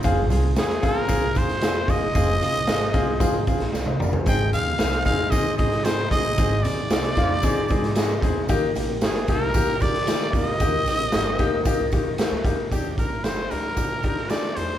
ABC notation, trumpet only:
X:1
M:4/4
L:1/8
Q:1/4=114
K:Eb
V:1 name="Trumpet"
z2 A B2 c2 e- | e4- e z3 | g f2 f e e c e- | e d6 z |
z2 A B2 d2 e- | e4- e z3 | G B c B3 d c |]